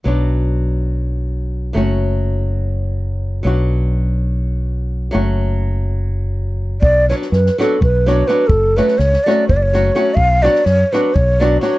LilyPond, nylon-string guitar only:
\new Staff \with { instrumentName = "Nylon-string guitar" } { \time 7/8 \key b \minor \tempo 4 = 125 <fis b d' fis'>2.~ <fis b d' fis'>8 | <fis a cis' fis'>2.~ <fis a cis' fis'>8 | <fis b d' fis'>2.~ <fis b d' fis'>8 | <fis a cis' fis'>2.~ <fis a cis' fis'>8 |
r8 <fis b d' fis'>8 r8 <fis b d' fis'>8 r8 <fis b d' fis'>8 <fis b d' fis'>8 | r8 <fis a cis' fis'>8 r8 <fis a cis' fis'>8 r8 <fis a cis' fis'>8 <fis a cis' fis'>8 | r8 <fis b d' fis'>8 r8 <fis b d' fis'>8 r8 <fis b d' fis'>8 <fis b d' fis'>8 | }